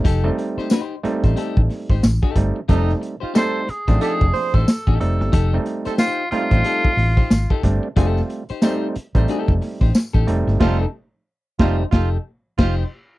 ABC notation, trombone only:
X:1
M:4/4
L:1/16
Q:"Swing 16ths" 1/4=91
K:Fmix
V:1 name="Trombone"
z16 | E2 z F A2 z2 A z c2 z4 | z3 A z2 F z8 z | z16 |
F2 z4 F2 F2 z2 F2 z2 |]